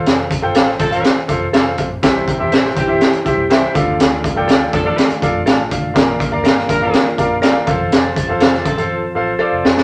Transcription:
<<
  \new Staff \with { instrumentName = "Clean electric guitar" } { \time 4/4 \key f \major \tempo 4 = 122 r4 <a' c'' f''>8 r4. <a' c'' f''>8 r8 | r4 <g' c'' e''>8 r4. <g' c'' e''>8 r8 | r4 <a' d'' f''>8 r4. <a' d'' f''>8 r8 | r4 <bes' d'' f''>8 r4. <bes' d'' f''>8 r8 |
r4 <a' c'' f''>8 r4. <a' c'' f''>8 r8 | }
  \new Staff \with { instrumentName = "Grand piano" } { \time 4/4 \key f \major << { r1 | r1 | r2. a''8 f''8~ | f''8 r2. r8 |
r1 | } \\ { <f' a' c'' f''>8 r16 <f' a' c'' g''>8. r16 <f' a' c'' f''>8 r16 <f' a' c'' f''>16 r16 <f' a' c'' f''>8. r16 | <e' g' c'' e''>8 r16 <e' g' c'' e''>8. r16 <e' g' c'' e''>8 r16 <e' g' c'' e''>16 r16 <e' g' c'' e''>8 <f' a' d'' f''>8~ | <f' a' d'' f''>8 r16 <f' a' d'' g''>8. r16 <f' a' d'' f''>8 r16 <f' a' d'' f''>16 r4 r16 | <f' bes' d'' f''>8 r16 <f' bes' d'' f''>8. r16 <f' bes' d'' f''>8 r16 <f' bes' d'' f''>16 r16 <f' bes' d'' f''>8 <f' a' c'' f''>8~ |
<f' a' c'' f''>8 r16 <f' a' c'' f''>8. r16 <f' a' c'' f''>8 r16 <f' a' c'' f''>16 r16 <f' a' c'' d''>8. r16 | } >> }
  \new Staff \with { instrumentName = "Grand piano" } { \clef bass \time 4/4 \key f \major r1 | c4. r2 d8~ | d4 r2. | bes,4. r2 r8 |
r1 | }
  \new Staff \with { instrumentName = "Horn section" } { \time 4/4 \key f \major r4. <f c' a'>8. r4. r16 | r4. <e c' g'>8. r4. r16 | r4. <f d' a'>8. r4. r16 | r4. <f d' bes'>8. r4. r16 |
r4. <f c' a'>8. r4. r16 | }
  \new Staff \with { instrumentName = "Tonewheel organ" } { \time 4/4 \key f \major r1 | <c' g'>2.~ <c' g'>8 <a f'>8~ | <a f'>1 | <bes f'>2.~ <bes f'>8 <c' a'>8~ |
<c' a'>1 | }
  \new Staff \with { instrumentName = "Tonewheel organ" } { \clef bass \time 4/4 \key f \major r1 | e2.~ e8 d8~ | d1~ | d2.~ d8 f8~ |
f1 | }
  \new Staff \with { instrumentName = "Fingered electric bass" } { \clef bass \time 4/4 \key f \major f,,8. g,,16 a,,8 a,,8 r8 f,,8 f,,8 bes,,8 | c,8. e,16 a,,8 bes,,8 r8 c,4 d,8 | d,8. c,16 d,8 f,8 r8 f,8 a,,8 d8 | bes,,8. d,16 g,,8 a,,8 r8 bes,,4 f,,8 |
f,,8. e,,16 f,,8 a,,8 r8 a,,8 r16 f,,16 f,8 | }
  \new DrumStaff \with { instrumentName = "Drums" } \drummode { \time 4/4 <hh sn>8 <hh bd>8 <hh sn>16 sn16 <hh bd>16 hh16 <hh sn>8 <hh bd>8 <hh sn>8 <hh bd>8 | <hh bd sn>8 <hh bd>8 <hh sn>16 sn16 <hh bd>8 <hh sn>16 hh16 <hh bd>8 <hh sn>8 <hh bd>8 | <hh sn>8 <hh bd>8 <hh sn>8 <hh bd>8 <hh sn>16 hh16 <hh bd>8 <hh sn>8 <hh bd>8 | <hh bd sn>8 <hh bd>8 <hh sn>16 sn16 <hh bd>8 <hh sn>8 <hh bd>8 <hh sn>8 <hh bd>8 |
<hh sn>8 <hh bd>8 <hh sn>16 sn16 <hh bd>16 hh16 r4 r8 sn16 sn16 | }
>>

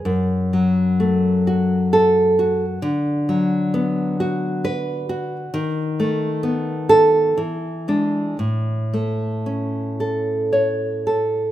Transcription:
\new Staff \with { instrumentName = "Nylon-string guitar" } { \time 3/4 \key a \major \tempo 4 = 64 << { r2 a'4 | r2 b'4 | r4. a'8 r8 d'8 | r2 cis''4 | } \\ { fis,8 fis8 a8 fis'4 fis'8 | d8 fis8 b8 fis'4 fis'8 | dis8 a8 b4 e8 gis8 | a,8 a8 cis'8 a'4 a'8 | } >> }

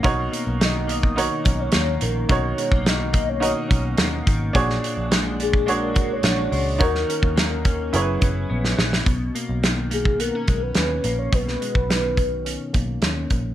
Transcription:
<<
  \new Staff \with { instrumentName = "Soft synth lead" } { \time 4/4 \key b \major \tempo 4 = 106 r4 dis''8 dis''4~ dis''32 dis''32 cis''8. ais'8 | cis''8 cis''8 dis''8. cis''4 r4 r16 | r4. gis'8 ais'8. cis''4~ cis''16 | ais'8 ais'8 ais'4 b'4. r8 |
r4. gis'8 ais'8. b'4 cis''16 | b'2. r4 | }
  \new Staff \with { instrumentName = "Upright piano" } { \time 4/4 \key b \major <dis' fis' ais' cis''>4 r4 <dis' fis' ais' cis''>4 r4 | <dis' fis' ais' cis''>4 r4 <dis' fis' ais' dis''>4 r4 | <d' fis' gis' cis''>4 r4 <d' fis' gis' cis''>4 r4 | <dis' fis' ais' cis''>4 r4 <e' gis' ais' b' cis''>4 r4 |
r1 | r1 | }
  \new Staff \with { instrumentName = "Clean electric guitar" } { \time 4/4 \key b \major b,8 ais8 dis8 ais8 dis8 cis'8 ais8 dis8 | b,8 gis16 ais16 dis8 ais8 dis8 cis'8 ais8 dis8 | ais,8 d'8 gis8 d'8 gis8 fis'8 d'8 gis8 | dis8 cis'8 ais8 cis'8 fis,8 cis'8 b8 e8 |
b,8 ais8 dis8 ais8 b16 cis'16 gis16 r16 cis'8 ais8 | b,8 gis16 r16 dis4 cis'8 ais8 cis'8 ais8 | }
  \new Staff \with { instrumentName = "Picked electric bass" } { \clef bass \time 4/4 \key b \major b,,8 r16 b,,4. r16 b,,8 dis,8 ais,,8 | b,,8 r16 b,,4. r16 b,,8 dis,8 gis,,8 | ais,,8 r16 ais,,2~ ais,,16 ais,,8 cis,8 | dis,8 r16 dis,4~ dis,16 fis,,8 fis,,8 ais,,8 ais,,8 |
b,,8 r16 b,,4. r16 b,,8 dis,8 ais,,8 | b,,8 r16 b,,4. r16 b,,8 dis,8 ais,,8 | }
  \new DrumStaff \with { instrumentName = "Drums" } \drummode { \time 4/4 <hh bd>8 hh8 <hh sn>8 hh16 bd16 hh8 <hh bd>8 <hh sn>8 hh8 | <hh bd>8 hh16 bd16 <hh sn>8 <hh bd>8 hh8 <hh bd>8 <hh sn>8 <hh bd>8 | <hh bd>16 sn16 hh8 <hh sn>8 hh16 bd16 hh8 <hh bd>8 <hh sn>8 hho8 | <hh bd>16 sn16 hh16 bd16 <hh sn>8 <hh bd>8 hh8 <hh bd>8 r16 sn16 sn16 sn16 |
<hh bd>8 hh8 <hh sn>8 hh16 bd16 hh8 <hh bd>8 <hh sn>8 hh8 | <hh bd>16 sn16 hh16 bd16 <hh sn>8 <hh bd>8 hh8 <hh bd>8 <hh sn>8 <hh bd>8 | }
>>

